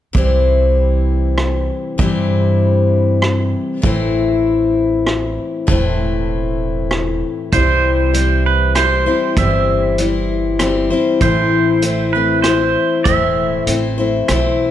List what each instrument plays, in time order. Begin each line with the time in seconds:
0.13 upright bass C2, steel-string acoustic guitar C3 E3 G3 C4 E4, kick
0.18 steel-string acoustic guitar C5
1.38 cross-stick
1.98 upright bass G2, steel-string acoustic guitar C3 E3 G3 C4 E4, kick
2.02 steel-string acoustic guitar C5
3.22 cross-stick
3.82 upright bass A1, steel-string acoustic guitar A2 E3 A3 C4 E4, kick
3.87 steel-string acoustic guitar C5
5.07 cross-stick
5.67 upright bass E1, steel-string acoustic guitar A2 E3 A3 C4, kick
5.71 steel-string acoustic guitar E4 C5
6.91 cross-stick
7.52 upright bass C2, steel-string acoustic guitar C3 E3 G3 C4 E4 C5, pedal steel guitar C5, kick, closed hi-hat
8.14 steel-string acoustic guitar G3 C4 E4, closed hi-hat
8.46 pedal steel guitar B4
8.75 steel-string acoustic guitar G3 C4 E4 C5, pedal steel guitar C5, cross-stick, closed hi-hat
9.06 steel-string acoustic guitar G3 C4 E4 C5
9.37 upright bass G1, steel-string acoustic guitar C3 E3 G3 C4 E4 C5, pedal steel guitar E5, kick, closed hi-hat
9.98 steel-string acoustic guitar G3 C4 E4 C5, closed hi-hat
10.59 steel-string acoustic guitar G3 C4 E4 C5, cross-stick, closed hi-hat
10.90 steel-string acoustic guitar G3 C4 E4 C5
11.21 upright bass A1, steel-string acoustic guitar A2 E3 A3 C4 E4 C5, pedal steel guitar C5, kick, closed hi-hat
11.82 steel-string acoustic guitar A3 C4 E4 C5, closed hi-hat
12.13 steel-string acoustic guitar A3 C4 E4, pedal steel guitar B4
12.42 steel-string acoustic guitar A3 C4, pedal steel guitar C5, cross-stick, closed hi-hat
12.46 steel-string acoustic guitar E4 C5
13.04 upright bass E1, steel-string acoustic guitar A2 E3 A3 C4 E4 C5, pedal steel guitar E5, kick, closed hi-hat
13.67 upright bass A1, steel-string acoustic guitar A3 C4 E4 C5, closed hi-hat
13.98 steel-string acoustic guitar A3 C4 E4 C5
14.28 upright bass B1, steel-string acoustic guitar A3 C4 E4 C5, cross-stick, closed hi-hat